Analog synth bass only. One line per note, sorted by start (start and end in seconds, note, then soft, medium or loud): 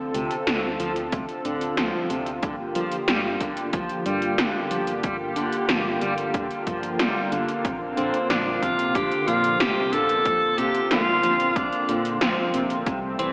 0.00 0.12 D2 loud
0.15 0.30 D2 medium
0.47 0.77 D2 medium
0.80 1.10 D2 medium
1.12 1.27 D2 medium
1.45 1.75 D1 loud
1.78 1.93 D2 medium
2.10 2.40 D2 medium
2.43 2.73 G1 loud
2.76 2.90 G1 medium
3.08 3.38 G1 medium
3.41 3.70 G1 medium
3.73 3.88 G1 medium
4.06 4.36 G2 loud
4.39 4.53 G1 medium
4.71 5.01 G1 medium
5.04 5.34 G1 loud
5.36 5.51 G1 medium
5.69 5.99 G1 medium
6.02 6.31 G1 medium
6.34 6.49 G1 medium
6.67 6.97 G1 medium
7.00 7.14 G1 loud
7.32 7.47 G1 loud
7.65 7.94 A#1 loud
7.98 8.12 A#1 medium
8.30 8.60 A#1 medium
8.63 8.92 A#1 medium
8.95 9.10 A#1 medium
9.28 9.58 A#2 loud
9.60 9.75 A#1 medium
9.93 10.23 A#1 medium
10.25 10.55 A#1 loud
10.58 10.73 A#1 medium
10.91 11.21 A#1 medium
11.24 11.53 A#1 medium
11.56 11.71 A#1 medium
11.89 12.18 A#2 loud
12.21 12.36 A#1 medium
12.54 12.84 A#1 medium
12.87 13.16 C2 loud
13.19 13.33 C2 medium